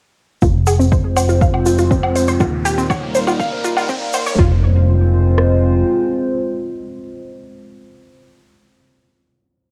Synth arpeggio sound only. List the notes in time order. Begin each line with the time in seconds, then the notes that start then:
0.42 F4
0.67 G#4
0.79 C4
0.92 C5
1.16 C5
1.29 F4
1.41 F5
1.66 F4
1.79 F4
1.91 C4
2.16 C5
2.28 C5
2.40 F4
2.65 G4
2.78 C4
2.90 C#5
3.15 C5
3.27 F4
3.40 F5
3.64 F4
3.77 F4
3.89 C4
4.14 C5
4.27 C#5
4.39 F4